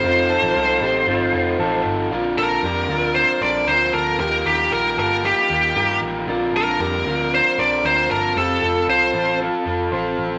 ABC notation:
X:1
M:4/4
L:1/16
Q:1/4=115
K:Bb
V:1 name="Lead electric guitar"
c12- c2 z2 | z2 B6 c2 d2 c2 B2 | B2 G2 B2 B2 G6 z2 | z2 B6 c2 d2 c2 B2 |
A4 c4 z8 |]
V:2 name="Clean electric guitar"
[CF]2 [FA]4 [EG]2 [CF]4 [FA]4 | [DF]2 [FA]2 [DG]2 [DF]4 [Ac]2 [FB]2 [FA]2 | [EG]2 [GB]4 [FA]2 [EG]4 [GB]4 | [DF]2 [FA]2 [DG]2 [DF]4 [Ac]2 [FB]2 [FA]2 |
[CG]2 [FA]4 [FA]2 [FA]4 [Ac]4 |]
V:3 name="Overdriven electric guitar"
[F,CEA]4 [F,CEA]2 [CEA]2 [F,CEA]2 [CEA]2 [F,CEA]4 | [B,,D,F,CDB]4 [B,,D,F,CDB]2 [F,CDB]2 [F,CDB]2 [F,CDB]2 [B,,D,F,CDB]4 | [E,F,B,FG]4 [E,F,B,FG]2 [B,FG]2 [F,B,FG]2 [B,FG]2 [E,F,B,FG]4 | [B,,D,F,CDB]4 [B,,D,F,CDB]2 [F,CDB]2 [F,CDB]2 [F,CDB]2 [B,,D,F,CDB]4 |
[F,CFA]4 [F,CFA]2 [CFA]2 [F,CFA]2 [CFA]2 [F,CFA]4 |]
V:4 name="Picked electric bass" clef=bass
F,,,3 A,,, C,,2 A,,,2 G,,,2 F,,,2 A,,,2 G,,,2 | B,,,2 B,,,2 F,,2 D,,3 z B,,,2 D,,2 D,,2 | E,,2 E,,2 B,,,2 G,,,3 z E,,2 G,,2 A,,,2 | B,,,2 B,,,2 F,,2 D,,3 z B,,,2 D,,2 G,,,2 |
F,,,2 F,,,2 C,,2 A,,,3 z F,,,2 A,,,2 A,,,2 |]